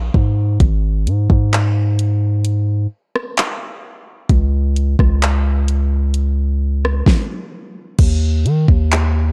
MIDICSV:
0, 0, Header, 1, 3, 480
1, 0, Start_track
1, 0, Tempo, 923077
1, 313, Time_signature, 4, 2, 24, 8
1, 4847, End_track
2, 0, Start_track
2, 0, Title_t, "808-style bass"
2, 0, Program_c, 0, 38
2, 0, Note_on_c, 0, 34, 104
2, 54, Note_off_c, 0, 34, 0
2, 75, Note_on_c, 0, 44, 96
2, 304, Note_off_c, 0, 44, 0
2, 313, Note_on_c, 0, 32, 111
2, 553, Note_on_c, 0, 44, 107
2, 561, Note_off_c, 0, 32, 0
2, 667, Note_off_c, 0, 44, 0
2, 675, Note_on_c, 0, 44, 101
2, 1493, Note_off_c, 0, 44, 0
2, 2234, Note_on_c, 0, 37, 110
2, 2579, Note_off_c, 0, 37, 0
2, 2595, Note_on_c, 0, 37, 111
2, 3653, Note_off_c, 0, 37, 0
2, 4154, Note_on_c, 0, 39, 104
2, 4394, Note_on_c, 0, 51, 107
2, 4402, Note_off_c, 0, 39, 0
2, 4507, Note_off_c, 0, 51, 0
2, 4516, Note_on_c, 0, 39, 103
2, 4847, Note_off_c, 0, 39, 0
2, 4847, End_track
3, 0, Start_track
3, 0, Title_t, "Drums"
3, 74, Note_on_c, 9, 36, 95
3, 126, Note_off_c, 9, 36, 0
3, 312, Note_on_c, 9, 42, 71
3, 313, Note_on_c, 9, 36, 109
3, 364, Note_off_c, 9, 42, 0
3, 365, Note_off_c, 9, 36, 0
3, 557, Note_on_c, 9, 42, 64
3, 609, Note_off_c, 9, 42, 0
3, 675, Note_on_c, 9, 36, 88
3, 727, Note_off_c, 9, 36, 0
3, 797, Note_on_c, 9, 42, 72
3, 798, Note_on_c, 9, 39, 106
3, 849, Note_off_c, 9, 42, 0
3, 850, Note_off_c, 9, 39, 0
3, 1035, Note_on_c, 9, 42, 75
3, 1087, Note_off_c, 9, 42, 0
3, 1272, Note_on_c, 9, 42, 76
3, 1324, Note_off_c, 9, 42, 0
3, 1641, Note_on_c, 9, 37, 90
3, 1693, Note_off_c, 9, 37, 0
3, 1754, Note_on_c, 9, 42, 80
3, 1759, Note_on_c, 9, 39, 125
3, 1806, Note_off_c, 9, 42, 0
3, 1811, Note_off_c, 9, 39, 0
3, 2233, Note_on_c, 9, 42, 76
3, 2234, Note_on_c, 9, 36, 109
3, 2285, Note_off_c, 9, 42, 0
3, 2286, Note_off_c, 9, 36, 0
3, 2477, Note_on_c, 9, 42, 63
3, 2529, Note_off_c, 9, 42, 0
3, 2595, Note_on_c, 9, 36, 92
3, 2599, Note_on_c, 9, 37, 64
3, 2647, Note_off_c, 9, 36, 0
3, 2651, Note_off_c, 9, 37, 0
3, 2717, Note_on_c, 9, 42, 75
3, 2719, Note_on_c, 9, 39, 109
3, 2769, Note_off_c, 9, 42, 0
3, 2771, Note_off_c, 9, 39, 0
3, 2955, Note_on_c, 9, 42, 71
3, 3007, Note_off_c, 9, 42, 0
3, 3193, Note_on_c, 9, 42, 76
3, 3245, Note_off_c, 9, 42, 0
3, 3561, Note_on_c, 9, 37, 90
3, 3613, Note_off_c, 9, 37, 0
3, 3673, Note_on_c, 9, 36, 108
3, 3679, Note_on_c, 9, 38, 97
3, 3725, Note_off_c, 9, 36, 0
3, 3731, Note_off_c, 9, 38, 0
3, 4153, Note_on_c, 9, 42, 73
3, 4153, Note_on_c, 9, 49, 97
3, 4154, Note_on_c, 9, 36, 115
3, 4205, Note_off_c, 9, 42, 0
3, 4205, Note_off_c, 9, 49, 0
3, 4206, Note_off_c, 9, 36, 0
3, 4398, Note_on_c, 9, 42, 63
3, 4450, Note_off_c, 9, 42, 0
3, 4515, Note_on_c, 9, 36, 91
3, 4567, Note_off_c, 9, 36, 0
3, 4638, Note_on_c, 9, 42, 73
3, 4640, Note_on_c, 9, 39, 113
3, 4690, Note_off_c, 9, 42, 0
3, 4692, Note_off_c, 9, 39, 0
3, 4847, End_track
0, 0, End_of_file